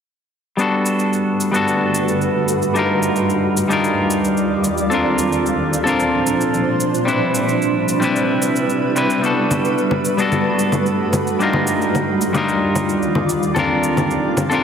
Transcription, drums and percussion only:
0.59 cabasa soft
0.86 cabasa medium
0.99 cabasa soft
1.13 cabasa soft
1.40 cabasa medium
1.54 cabasa soft
1.68 cabasa soft
1.95 cabasa medium
2.08 cabasa soft
2.21 cabasa soft
2.48 cabasa medium
2.62 cabasa soft
2.76 cabasa soft
3.03 cabasa medium
3.16 cabasa soft
3.30 cabasa soft
3.57 cabasa medium
3.71 cabasa soft
3.84 cabasa soft
4.10 cabasa medium
4.24 cabasa soft
4.37 cabasa soft
4.64 cabasa medium
4.78 cabasa soft
4.91 cabasa soft
5.18 cabasa medium
5.32 cabasa soft
5.46 cabasa soft
5.73 cabasa medium
5.87 cabasa soft
6.00 cabasa soft
6.27 cabasa medium
6.41 cabasa soft
6.54 cabasa soft
6.80 cabasa medium
6.94 cabasa soft
7.08 cabasa soft
7.35 cabasa medium
7.48 cabasa soft
7.62 cabasa soft
7.88 cabasa medium
8.02 cabasa soft
8.16 cabasa soft
8.42 cabasa medium
8.56 cabasa soft
8.70 cabasa soft
8.96 cabasa medium
9.10 cabasa soft
9.24 cabasa soft
9.51 low conga medium
9.51 cabasa medium
9.65 cabasa soft
9.78 cabasa soft
9.91 low conga medium
10.05 cabasa medium
10.19 cabasa soft
10.32 low conga medium
10.32 cabasa soft
10.59 cabasa medium
10.72 low conga medium
10.72 cabasa soft
10.86 cabasa soft
11.13 low conga medium
11.13 cabasa medium
11.27 cabasa soft
11.40 cabasa soft
11.53 low conga medium
11.67 cabasa medium
11.81 cabasa soft
11.95 low conga medium
11.95 cabasa soft
12.21 cabasa medium
12.35 low conga medium
12.35 cabasa soft
12.49 cabasa soft
12.75 low conga medium
12.75 cabasa medium
12.89 cabasa soft
13.02 cabasa soft
13.15 low conga medium
13.29 cabasa medium
13.43 cabasa soft
13.56 low conga medium
13.56 cabasa soft
13.83 cabasa medium
13.97 low conga medium
13.97 cabasa soft
14.11 cabasa soft
14.37 low conga medium
14.37 cabasa medium
14.51 cabasa soft

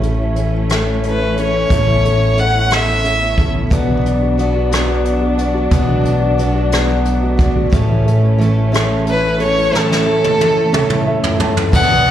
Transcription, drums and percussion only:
0.03 closed hi-hat soft
0.36 closed hi-hat soft
0.69 cross-stick medium
0.69 closed hi-hat medium
1.03 closed hi-hat soft
1.37 closed hi-hat soft
1.70 kick medium
1.70 closed hi-hat medium
2.05 closed hi-hat soft
2.38 closed hi-hat soft
2.70 cross-stick medium
2.70 closed hi-hat medium
3.05 closed hi-hat soft
3.38 kick medium
3.38 closed hi-hat soft
3.71 kick medium
3.71 closed hi-hat medium
4.06 closed hi-hat soft
4.39 closed hi-hat soft
4.72 cross-stick medium
4.72 closed hi-hat medium
5.05 closed hi-hat soft
5.39 closed hi-hat soft
5.71 kick medium
5.71 closed hi-hat medium
6.05 closed hi-hat soft
6.39 closed hi-hat soft
6.72 cross-stick medium
6.72 closed hi-hat medium
7.05 closed hi-hat soft
7.39 kick medium
7.39 closed hi-hat soft
7.73 kick medium
7.73 closed hi-hat medium
8.08 closed hi-hat soft
8.41 closed hi-hat soft
8.74 cross-stick medium
8.74 closed hi-hat medium
9.07 closed hi-hat soft
9.40 closed hi-hat soft
9.75 snare medium
9.92 snare soft
10.24 high tom medium
10.41 high tom medium
10.74 mid tom medium
10.90 mid tom medium
11.24 floor tom medium
11.40 floor tom medium
11.57 floor tom medium
11.73 kick loud
11.73 crash medium
12.08 closed hi-hat soft

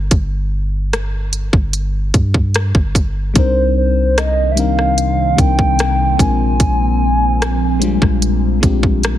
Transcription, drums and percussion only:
0.11 kick loud
0.11 closed hi-hat medium
0.93 cross-stick loud
0.93 closed hi-hat medium
1.33 closed hi-hat medium
1.53 kick medium
1.73 closed hi-hat medium
2.14 kick medium
2.14 closed hi-hat medium
2.34 kick medium
2.54 cross-stick loud
2.54 closed hi-hat medium
2.75 kick loud
2.95 kick medium
2.95 closed hi-hat medium
3.35 kick medium
3.35 closed hi-hat medium
4.18 cross-stick loud
4.18 closed hi-hat medium
4.57 closed hi-hat medium
4.79 cross-stick medium
4.98 closed hi-hat medium
5.38 kick medium
5.38 closed hi-hat medium
5.59 kick medium
5.79 cross-stick loud
5.79 closed hi-hat medium
6.19 kick medium
6.19 closed hi-hat medium
6.60 kick medium
6.60 closed hi-hat medium
7.42 cross-stick loud
7.42 closed hi-hat medium
7.82 closed hi-hat medium
8.02 kick medium
8.02 cross-stick medium
8.22 closed hi-hat medium
8.63 kick medium
8.63 closed hi-hat medium
8.83 kick medium
9.03 cross-stick loud
9.03 closed hi-hat medium

